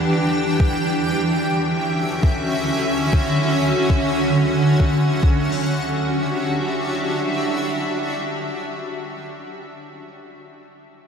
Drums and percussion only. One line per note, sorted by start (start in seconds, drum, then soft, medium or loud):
0.00 closed hi-hat soft
0.13 closed hi-hat medium
0.30 closed hi-hat soft
0.60 kick loud
0.73 closed hi-hat medium
0.90 closed hi-hat soft
1.20 closed hi-hat soft
1.33 closed hi-hat medium
1.80 closed hi-hat soft
1.93 closed hi-hat medium
2.03 closed hi-hat medium
2.10 closed hi-hat soft
2.13 closed hi-hat soft
2.23 kick loud
2.40 closed hi-hat soft
2.43 closed hi-hat soft
2.47 closed hi-hat soft
2.50 closed hi-hat soft
2.53 closed hi-hat medium
2.66 closed hi-hat soft
2.70 closed hi-hat soft
3.13 kick loud
3.13 closed hi-hat medium
3.73 closed hi-hat medium
3.90 kick loud
4.20 closed hi-hat medium
4.33 closed hi-hat medium
4.80 kick loud
4.93 closed hi-hat medium
5.10 closed hi-hat soft
5.23 kick loud
5.23 crash medium